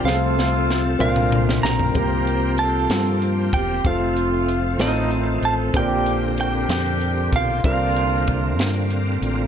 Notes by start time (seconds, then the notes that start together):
0.04 C2 C3 F3 A3 C4 F4 G#4 A4 F5, snare
0.13 A4
0.39 snare
0.71 snare
0.99 C2 A#2 D3 A#3 C4 D4 F4 A#4 F5, mid tom
1.16 mid tom
1.32 mid tom
1.47 E5, snare
1.63 B1 F4 G4 A#4 A#5, snare
1.79 floor tom
1.95 C2 C3 F3 A#3 C4 F4 G4, kick, closed hi-hat
2.27 closed hi-hat
2.58 F4 A4 A5, closed hi-hat
2.90 G2, snare, closed hi-hat
3.22 closed hi-hat
3.53 E1 G4 G5, kick, closed hi-hat
3.85 F1 F3 A3 C4 F4 A4 F5, kick, closed hi-hat
4.17 closed hi-hat
4.49 closed hi-hat
4.78 A1 A2 D#3 A3 C4 D#4 F4 A4 D#5, snare, closed hi-hat
5.11 D#4, closed hi-hat
5.42 A1 A4 A5, closed hi-hat
5.74 A#1 A#2 D3 A#3 C4 D4 G4 A#4 G5, kick, closed hi-hat
6.06 closed hi-hat
6.38 C4 D4 G4 G5, closed hi-hat
6.69 F2, snare, closed hi-hat
7.01 closed hi-hat
7.33 B1 F4 F5, kick, closed hi-hat
7.64 C2 C3 D3 A#3 C4 D4 F4 A#4 F5, kick, closed hi-hat
7.96 closed hi-hat
8.27 kick, closed hi-hat
8.45 E5
8.58 G2, snare, closed hi-hat
8.90 closed hi-hat
9.22 A1, closed hi-hat